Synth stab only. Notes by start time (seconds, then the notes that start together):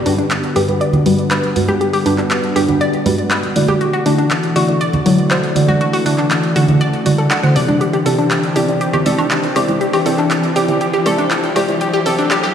0.06 G2 G3 D4 F#4 B4
0.56 G2 G3 D4 F#4 B4
0.69 G2 G3 D4 F#4 B4
1.06 G2 G3 D4 F#4 B4
1.56 G2 G3 D4 F#4 B4
2.06 G2 G3 D4 F#4 B4
2.56 G2 G3 D4 F#4 B4
2.68 G2 G3 D4 F#4 B4
3.06 G2 G3 D4 F#4 B4
3.56 D3 A3 E4 F#4 D5
4.06 D3 A3 E4 F#4 D5
4.56 D3 A3 E4 F#4 D5
4.68 D3 A3 E4 F#4 D5
5.06 D3 A3 E4 F#4 D5
5.56 D3 A3 E4 F#4 D5
6.06 D3 A3 E4 F#4 D5
6.56 D3 A3 E4 F#4 D5
6.68 D3 A3 E4 F#4 D5
7.06 D3 A3 E4 F#4 D5
7.43 D3 A3 E4 F#4 C5
7.56 C3 C4 E4 G4 D5
8.06 C3 C4 E4 G4 D5
8.56 C3 C4 E4 G4 D5
8.68 C3 C4 E4 G4 D5
9.06 C3 C4 E4 G4 D5
9.56 C3 C4 E4 G4 D5
9.68 C3 C4 E4 G4 D5
10.06 C3 C4 E4 G4 D5
10.56 C3 C4 E4 G4 D5
10.68 C3 C4 E4 G4 D5
11.06 C3 C4 E4 G4 D5
11.56 C3 C4 E4 G4 D5
11.68 C3 C4 E4 G4 D5
12.06 C3 C4 E4 G4 D5